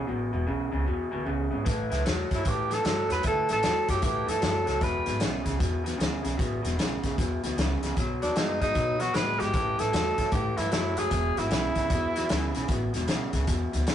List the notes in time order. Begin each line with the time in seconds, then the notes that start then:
0.07 A1 E2 B2
0.33 E1 E2 B2
0.47 B1 E2 C#3
0.72 C#2 E2 C#3
0.86 E2 B2
1.11 D2 E2 B2
1.25 C#2 E2 C#3
1.51 G#1 E2 C#3
1.65 A1 A2 E3, kick, snare, closed hi-hat
1.90 C#2 A2 E3, snare, closed hi-hat
2.05 E2 A2 F#3, snare, closed hi-hat
2.30 F#2 A2 F#3, kick, snare, closed hi-hat
2.35 E4
2.44 A2 E3, kick, snare, closed hi-hat
2.48 G4
2.70 A2 E3 A4, snare, closed hi-hat
2.84 G2 A2 F#3, snare, closed hi-hat
3.08 E2 A2 F#3 B4, snare, closed hi-hat
3.23 D2 A2 E3, kick, snare, closed hi-hat
3.27 A4
3.49 A1 A2 E3 A4, snare, closed hi-hat
3.63 E2 A2 F#3, snare, closed hi-hat
3.87 F#2 A2 F#3 G4, kick, snare, closed hi-hat
4.01 A2 E3 G4, kick, snare, closed hi-hat
4.26 G2 A2 E3 A4, snare, closed hi-hat
4.41 F#2 A2 F#3, snare, closed hi-hat
4.66 C#2 A2 F#3 A4, snare, closed hi-hat
4.80 E1 E2 B2 B4, kick, snare, closed hi-hat
5.06 G#1 E2 B2, snare, closed hi-hat
5.20 B1 E2 C#3, snare, closed hi-hat
5.44 C#2 E2 C#3, kick, snare, closed hi-hat
5.59 E2 B2, kick, snare, closed hi-hat
5.84 E2 B2, snare, closed hi-hat
5.98 D2 E2 C#3, snare, closed hi-hat
6.22 B1 E2 C#3, snare, closed hi-hat
6.37 A1 E2 B2, kick, snare, closed hi-hat
6.62 E1 E2 B2, snare, closed hi-hat
6.77 B1 E2 C#3, snare, closed hi-hat
7.03 C#2 E2 C#3, kick, snare, closed hi-hat
7.18 E2 B2, kick, snare, closed hi-hat
7.43 D2 E2 B2, snare, closed hi-hat
7.57 C#2 E2 C#3, snare, closed hi-hat
7.82 C#2 E2 C#3, snare, closed hi-hat
7.97 B1 B2 F#3, kick, snare, closed hi-hat
8.21 D#2 B2 F#3 D4, snare, closed hi-hat
8.35 F#2 B2 G#3 D#4, snare, closed hi-hat
8.60 G#2 B2 G#3 D#4, kick, snare, closed hi-hat
8.74 B2 F#3, kick, snare, closed hi-hat
8.98 B2 F#3 F#4, snare, closed hi-hat
9.13 A2 B2 G#3 B4, snare, closed hi-hat
9.39 G#1 B2 G#3 G4, snare, closed hi-hat
9.53 A1 A2 E3, kick, snare, closed hi-hat
9.78 A1 A2 E3 A4, snare, closed hi-hat
9.91 E2 A2 F#3, snare, closed hi-hat
10.17 F#2 A2 F#3, kick, snare, closed hi-hat
10.32 A2 E3 G4, kick, snare, closed hi-hat
10.57 G2 A2 E3 E4, snare, closed hi-hat
10.71 F#2 A2 F#3 E4, snare, closed hi-hat
10.97 F#1 A2 F#3 G#4, snare, closed hi-hat
11.10 E1 E2 B2, kick, snare, closed hi-hat
11.36 G#1 E2 B2 E4, snare, closed hi-hat
11.49 B1 E2 C#3, snare, closed hi-hat
11.75 C#2 E2 C#3, kick, snare, closed hi-hat
11.90 E2 B2, kick, snare, closed hi-hat
12.15 E2 B2, snare, closed hi-hat
12.29 D2 E2 C#3, snare, closed hi-hat
12.55 B1 E2 C#3, snare, closed hi-hat
12.68 A1 E2 B2, kick, snare, closed hi-hat
12.93 E1 E2 B2, snare, closed hi-hat
13.08 E2 C#3, snare, closed hi-hat
13.33 C#2 E2 C#3, kick, snare, closed hi-hat
13.47 E2 B2, kick, snare, closed hi-hat
13.72 D2 E2 B2, snare, closed hi-hat
13.87 E2 C#3, snare, closed hi-hat